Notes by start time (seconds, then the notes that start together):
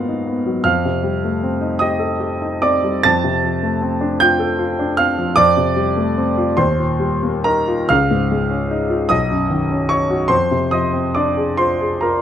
Already playing: G#2 D#3 F#3 A#3 B3 D#4 F4 F#4 F5 F#5
0.08 D#4
0.27 B3
0.46 F#3
0.64 F2 F5 F6
0.85 C3
1.03 G3
1.25 A3
1.43 C4
1.61 D#4
1.79 G4 D#5 D#6
1.99 A4
2.20 G4
2.42 D#4
2.62 C4 D5 D6
2.84 G3
3.03 F2 A5 A6
3.24 C3
3.44 F3
3.63 A3
3.82 C4
4.01 D4
4.20 F4 G5 G6
4.39 A4
4.59 F4
4.79 D4
4.97 C4 F5 F6
5.18 F3
5.36 F2 D5 D6
5.57 C3
5.76 G3
5.97 A3
6.17 C4
6.37 F4
6.57 D#2 C5 C6
6.78 A#2
7.00 G3
7.23 A#3
7.44 D#4 A#4 A#5
7.68 F4
7.89 C#2 F5 F6
8.11 G#2
8.32 G#3
8.50 C#4
8.71 D#4
8.90 F4
9.09 B1 D#5 D#6
9.30 F#2
9.50 D#3
9.70 C#4
9.89 D#4 C#5 C#6
10.10 F#4
10.28 F2 C5 C6
10.51 C3
10.71 F3 D#5 D#6
10.93 C4
11.15 D4 D5 D6
11.37 G#4
11.57 F4 C5 C6
11.81 G#4
12.01 F4 A#4 A#5